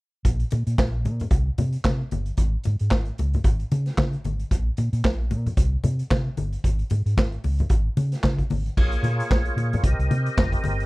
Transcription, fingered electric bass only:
0.25 A#1
0.53 A#2
0.67 A#2
0.78 A#1
1.05 A#2
1.31 C2
1.59 C3
1.85 C3
2.12 G1
2.38 G#1
2.66 G#2
2.81 G#2
2.92 G#1
3.19 C#2
3.45 G#1
3.72 C#3
3.98 C#3
4.24 G#1
4.51 A#1
4.78 A#2
4.93 A#2
5.05 A#1
5.31 A#2
5.58 C2
5.84 C3
6.11 C3
6.38 G1
6.64 G#1
6.91 G#2
7.06 G#2
7.18 G#1
7.44 C#2
7.70 G#1
7.97 C#3
8.24 C#3
8.50 G#1
8.78 A#1
9.03 A#2
9.31 A#1
9.56 A#2
9.84 C2
9.99 C2
10.11 C3
10.38 F1
10.65 G1

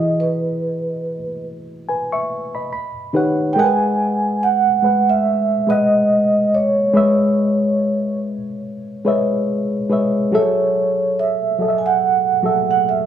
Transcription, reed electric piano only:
Already playing: E3 E4 F#4 G#4 D#5
1.89 B4 G#5
2.12 E5 C#6
2.55 D#5 B5
2.73 B5
3.13 D#3 D#4 G4 B4 C#5 F#5
3.56 G#3 G#4 A#4 D#5 F#5
3.64 B4
4.82 G#3 G#4 B4 F#5
5.67 G#3 G#4 B4 D#5 F#5
6.93 G#3 G#4 B4 C#5 D#5 E5
9.05 G#3 G#4 B4 C#5 D#5 E5
9.89 G#3 G#4 B4 C#5 D#5 E5
10.31 F#3 F#4 G#4 A4 E5
11.58 F#3 F#4 G#4 A4 D#5
11.69 E5
12.42 F#3 F#4 G#4 A4 E5

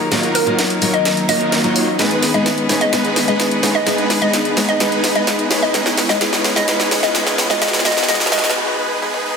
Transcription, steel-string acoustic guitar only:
0.11 F#3 D#4 A#4 F5
0.46 F#3 D#4 F4 A#4
0.81 F#3 D#4 F4 A#4
1.28 F#3 D#4 A#4 F5
1.63 F#3 D#4 F4 D#5
1.99 G#3 B3 D#4 B4
2.34 G#3 B3 D#4 B4
2.69 G#3 B3 D#4 B4
2.92 G#3 B3 D#4 B4
3.27 G#3 B3 D#4 B4
3.62 G#3 B3 D#4 B4
3.86 G#3 B3 D#4 B4
4.21 G#3 B3 D#4 B4
4.56 G#3 B3 D#4 B4
4.80 G#3 B3 D#4 B4
5.15 G#3 B3 D#4 B4
5.50 G#3 B3 D#4 B4
5.73 G#3 B3 D#4 B4
6.09 G#3 B3 D#4 B4
6.20 G#3 B3 D#4 B4
6.55 G#3 B3 D#4 B4
6.67 G#3 B3 D#4 B4
7.02 G#3 B3 D#4 B4
7.14 G#3 B3 D#4 B4
7.49 G#3 B3 D#4 B4
7.61 G#3 B3 D#4 B4
7.84 G#3 B3 D#4 B4
8.08 G#3 B3 D#4 B4
8.31 G#3 B3 D#4 B4

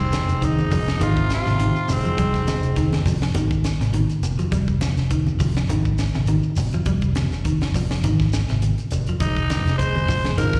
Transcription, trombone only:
Already playing: G#2
0.46 G#2
1.05 C3
1.34 C3
1.93 G#2
9.22 G#2
9.81 G#3
10.40 F3

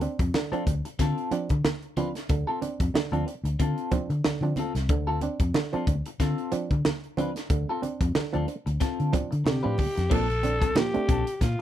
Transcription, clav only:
0.01 C4 D4
0.34 D3
0.52 F3 C4 D4
0.67 C4 D4
1.31 F3 C4 D4
1.97 F3 C4 D4
2.30 D3
2.61 C4 D4
2.94 D3
3.13 F3 C4 D4
3.27 C4 D4
3.91 F3 C4 D4
4.25 D3
4.42 F3 C4 D4
4.57 C4 D4
4.90 D3
5.22 C4 D4
5.55 D3
5.73 F3 C4 D4
5.87 C4 D4
6.52 F3 C4 D4
7.17 F3 C4 D4
7.50 D3
7.82 C4 D4
8.15 D3
8.33 F3 C4 D4
8.48 C4 D4
9.13 F3 C4 D4
9.46 D3
9.63 F3 C4 D4
9.78 C4 D4
10.11 A#2 F3
10.43 C4 D4
10.76 A#2 F3
10.94 A3 C4 D4
11.09 C4 D4

